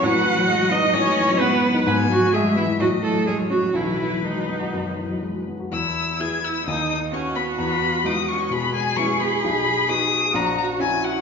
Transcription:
<<
  \new Staff \with { instrumentName = "Violin" } { \time 4/4 \key e \major \tempo 4 = 130 b'4 dis''2 fis''4 | gis''4 e''4 dis''4 cis''4 | b'2.~ b'8 r8 | e'''4 gis'''8 e'''8 dis'''8 dis'''8 cis'''8 b''8 |
b''4 dis'''8 cis'''8 b''8 gis''8 cis'''8 b''8 | b''4 dis'''4 ais''8 ais''8 gis''8 fis''8 | }
  \new Staff \with { instrumentName = "Viola" } { \time 4/4 \key e \major fis''4. dis''8 cis''4 b'4 | b'8 fis'8 gis'8 e'8 fis'8 a'8 gis'8 fis'8 | e'4 dis'2 r4 | e'4 gis'8 e'8 dis'8 dis'8 cis'8 b8 |
b4 dis'8 cis'8 b8 gis8 cis'8 b8 | dis'8 gis'8 fis'4 fis'2 | }
  \new Staff \with { instrumentName = "Cello" } { \time 4/4 \key e \major fis'4. dis'8 cis'4 b4 | b8 fis8 gis8 e8 fis8 a8 gis8 fis8 | e4 dis2 r4 | r2 dis'4 fis'4~ |
fis'2 gis'2~ | gis'2 fis'4 e'4 | }
  \new Staff \with { instrumentName = "Grand piano" } { \clef bass \time 4/4 \key e \major a,16 fis16 e16 fis16 gis16 fis16 b16 dis'16 a,16 fis16 e16 fis16 gis16 fis16 b16 dis'16 | gis,16 gis16 fis16 gis16 a16 gis16 b16 e'16 a,16 fis16 e16 fis16 gis16 fis16 cis'16 fis'16 | b,,16 fis16 e16 fis16 gis16 fis16 b16 fis'16 fis,16 fis16 e16 fis16 gis16 fis16 b16 fis'16 | e,4 <b e'>4 dis,4 <b fis'>4 |
e,4 <gis b e'>4 b,4 <gis b e'>4 | b,,4 <b dis'>4 ais,,4 <cis' fis'>4 | }
>>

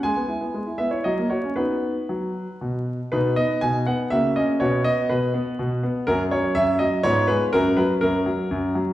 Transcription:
<<
  \new Staff \with { instrumentName = "Grand piano" } { \time 3/4 \key b \major \tempo 4 = 122 << { gis''4. e''16 cis''16 dis''8 cis''8 | b'2~ b'8 r8 | b'8 dis''8 gis''8 fis''8 e''8 dis''8 | cis''8 dis''8 b'4. r8 |
ais'8 cis''8 e''8 dis''8 cis''8 b'8 | ais'8 b'8 ais'4. r8 | } \\ { r2. | r2. | <b dis'>2 <ais fis'>4 | <b fis'>2. |
<cis' fis'>2 <b eis'>4 | <cis' fis'>2. | } >> }
  \new Staff \with { instrumentName = "Grand piano" } { \clef bass \time 3/4 \key b \major gis16 b16 e'16 b16 gis16 e'16 b16 e'16 fis16 ais16 fis'16 cis'16 | <b dis' fis'>4 fis4 b,4 | b,8 b8 b,8 b8 cis8 cis'8 | b,8 b8 b,8 b8 b,8 b8 |
fis,8 fis8 fis,8 fis8 gis,8 gis8 | fis,8 fis8 fis,8 fis8 fis,8 fis8 | }
>>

